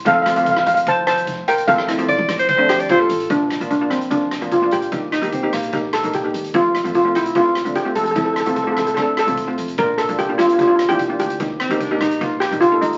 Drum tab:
HH |x-xxx-xxx-xxx-xx|x-xxx-xxx-xxx-xx|x-xxx-xxx-xxx-xx|x-xxx-xxx-xxx-xx|
SD |--r--r----r-----|-rr---r---r-----|--r---r---r-----|--r---r---r-----|
BD |o---o---o---o---|o---o---o---o---|o---o---o---o---|o---o---o---o---|

HH |x-xxx-xxx-xxx-xx|x-xxx-xxx-xxx-xx|x-xxx-xxx-xxx-xx|x-xxx-xxx-xxx-xx|
SD |--r---r---r-----|--r---r-r-r-----|--r---r---r-----|--r---r---r-----|
BD |o---o---o---o---|o---o---o---o---|o---o---o---o---|o---o---o---o---|